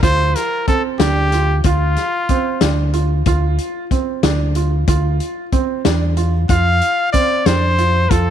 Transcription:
0.03 D2 F4 C5, kick, closed hi-hat
0.35 A#4, snare, closed hi-hat
0.67 C4 A4, kick, closed hi-hat
0.99 D2 D4 G4, snare, closed hi-hat
1.32 F4, snare, closed hi-hat
1.64 D2 F4, kick, closed hi-hat
1.96 snare, closed hi-hat
2.29 C4, kick, closed hi-hat
2.61 D2 D4, snare, closed hi-hat
2.93 F4, closed hi-hat
3.26 D2 F4, kick, closed hi-hat
3.58 closed hi-hat
3.91 C4, kick, closed hi-hat
4.23 D2 D4, snare, closed hi-hat
4.55 F4, closed hi-hat
4.88 D2 F4, kick, closed hi-hat
5.20 closed hi-hat
5.52 C4, kick, closed hi-hat
5.85 E2 D4, snare, closed hi-hat
6.17 F4, closed hi-hat
6.49 F2 F4 F5, kick, closed hi-hat
6.81 closed hi-hat
7.12 C4 D5, kick, closed hi-hat
7.46 F2 D4 C5, snare, closed hi-hat
7.78 F4, closed hi-hat
8.10 F2 F4 A4, kick, closed hi-hat

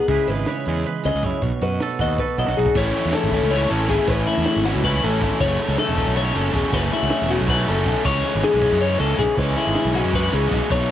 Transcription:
Already playing: B4
0.08 C#2 C#3 G#3 E4 G#4 B4, kick, closed hi-hat
0.28 G#1 G#4 B4, closed hi-hat
0.46 B4 C#5, snare, closed hi-hat
0.65 E2 G#3 G#4, closed hi-hat
0.84 B4, closed hi-hat
1.03 C#2 C#3 G#4 D#5, snare, closed hi-hat
1.14 C#2
1.22 F#2 E4 C#5, kick, closed hi-hat
1.42 B1 B2, kick, closed hi-hat
1.61 F#2 F#4 B4, closed hi-hat
1.80 A4, snare, closed hi-hat
1.99 D#2 B3 F#4 D#5, kick, closed hi-hat
2.18 A4 B4, kick, closed hi-hat
2.38 B1 F#3 E4 D#5, closed hi-hat
2.47 B1 F#4, snare
2.57 B1 D#4 G#4
2.66 kick
2.74 A1 A2 E3 A3 C#4 E4 C#5, kick, crash
2.94 ride
3.05 E2
3.13 A4, snare, ride
3.23 G#1
3.31 A3 C#4 E4, kick, snare, ride
3.43 C#2
3.50 E3 A3 C#4 E4 C#5, ride
3.69 A1 A3 C#4 E4 A4, ride
3.89 G#1 A2 E3 A3 C#4 E4 G#4, kick, ride
4.07 A1 A2 E3 A3 C#4 E4 B4, kick, ride
4.27 E4, snare, ride
4.38 E2
4.46 snare, ride
4.56 G#1
4.64 A3 C#4 E4 F#4, ride
4.76 C#2
4.83 E3 A3 C#4 E4 B4, kick, ride
5.02 A1 A3 C#4 E4 A4, ride
5.22 G#1 A2 E3 A3 C#4 E4, kick, snare, ride
5.40 F#1 F#2 C#3 F#3 A3 C#4 C#5, kick, ride
5.60 ride
5.68 C#2
5.78 A4, snare, ride
5.88 E1
5.97 F#3 A3 C#4, kick, ride
6.07 B1
6.14 C#3 F#3 A3 C#4 C#5, ride
6.33 F#1 F#3 A3 C#4 A4, snare, ride
6.52 E1 F#2 C#3 F#3 A3 C#4 G#4, kick, ride
6.72 F#1 F#2 C#3 F#3 A3 C#4 B4, kick, ride
6.92 E4, snare, ride
7.03 C#2
7.10 snare, ride
7.22 E1
7.28 F#3 A3 C#4 F#4, ride
7.41 B1
7.47 C#3 F#3 A3 C#4 B4, kick, ride
7.66 F#1 F#3 A3 C#4 A4, snare, ride
7.86 B1 F#2 C#3 F#3 A3 C#4, kick, ride
8.04 C#2 C#3 E3 G#3 C#4 C#5, kick, crash
8.25 snare, ride
8.35 G#1
8.43 G#4, snare, ride
8.54 B1
8.61 E3 G#3 C#4, kick, ride
8.72 F#2
8.80 C#3 E3 G#3 C#4 C#5, ride
8.99 C#2 E3 G#3 C#4 A4, ride
9.17 B1 C#3 E3 G#3 C#4 G#4, kick, snare, ride
9.35 C#2 C#3 E3 G#3 C#4 B4, kick, ride
9.56 E4, ride
9.67 G#1
9.75 snare, ride
9.85 B1
9.93 E3 G#3 C#4 F#4, snare, ride
10.04 F#2
10.12 C#3 E3 G#3 C#4 B4, kick, ride
10.30 C#2 E3 G#3 C#4 G#4, snare, ride
10.50 B1 C#3 E3 G#3 C#4, kick, ride
10.68 B1 B2 F#3 A3 D#4 C#5, kick, ride

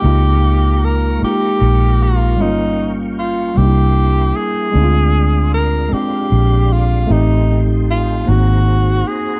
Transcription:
Already playing: G4 F5
0.02 C#2 G#3 A#3 D#4 A#4 A#5 C#6
0.07 F4
0.84 A#4
1.19 G#3 A#3 D#4, muted fingered electric bass stroke
1.24 F4 G4
1.31 G4
1.61 A#1
2.02 F4
2.36 G1 G3 G#3 C#4 F5 G5 C#6
2.41 A#3 D#4 F4
3.19 F4
3.54 C2 G3 A#3 D4 G4 E5 C6
3.60 D#4
3.66 E4
4.36 G#4
4.72 D2 G#3 C4 D4 D5 F5
4.77 D#4
4.84 F4
5.54 A#4
5.89 G#3 C4 D4, muted fingered electric bass stroke
5.93 G4
6.32 A#1
6.73 F4
7.07 A1 A3 C4 D#4 A4 D#5 G5 C6
7.12 D#4 G4
7.91 F4
8.25 G#1 A#3 B3 D#4 G#4 C5 F#5 A#5
8.29 C4 F#4
9.07 G#4

